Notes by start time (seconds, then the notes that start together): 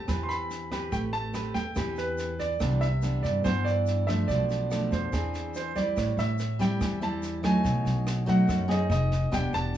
Already playing: A5
0.08 E2 E3 C4 G4 B4, kick, cross-stick, snare, shaker
0.23 C6
0.29 B5, snare, shaker
0.51 snare, shaker
0.71 C4 G4 B4, kick, cross-stick, snare, shaker
0.92 A1 A3 G5, kick, snare, shaker
1.13 A5, snare, shaker
1.34 C4 G4 B4, cross-stick, snare, shaker
1.54 E2 G5, kick, snare, shaker
1.75 E2 E3 C4 G4 B4, kick, cross-stick, snare, shaker
1.96 B4, snare, shaker
2.18 snare, shaker
2.39 D5, kick, snare, shaker
2.60 C2 C3 E3 B3 D4, kick, cross-stick, snare, shaker
2.81 E5, snare, shaker
3.02 E3 B3 D4, snare, shaker
3.23 G2 D5, kick, snare, shaker
3.44 G2 E3 B3 D4 C5, kick, cross-stick, snare, shaker
3.65 D5, snare, shaker
3.86 snare, shaker
4.07 F3 A3 D4 E5, kick, cross-stick, snare, shaker
4.28 B1 B2 D5, kick, snare, shaker
4.49 snare, shaker
4.71 F3 A3 D4, cross-stick, snare, shaker
4.92 F2 C5, kick, snare, shaker
5.12 E2 E3 C4 D4 G#4, kick, cross-stick, snare, shaker
5.34 snare, shaker
5.54 C5, snare, shaker
5.76 G3 C4 E4 D5, kick, snare, shaker
5.96 A1 A2, kick, cross-stick, snare, shaker
6.17 A1 E5, snare, shaker
6.39 snare, shaker
6.59 G3 C4 E4 G5, kick, snare, shaker
6.81 E2 E3, kick, cross-stick, snare, shaker
7.01 G3 C4 E4 A5, snare, shaker
7.23 snare, shaker
7.43 F#3 A3 D#4 G#5, kick, cross-stick, snare, shaker
7.64 B1 B2, kick, snare, shaker
7.85 B1, snare, shaker
8.07 cross-stick, snare, shaker
8.26 F#3 A3 D#4 F#5, kick, snare, shaker
8.47 F#2, kick, cross-stick, snare, shaker
8.68 C4 D#4 G#4 D#5, snare, shaker
8.90 F1 D#5, snare, shaker
9.11 kick, snare, shaker
9.31 E1 E3 B3 D4 G4 G5, kick, cross-stick, snare, shaker
9.53 E1 A5, snare, shaker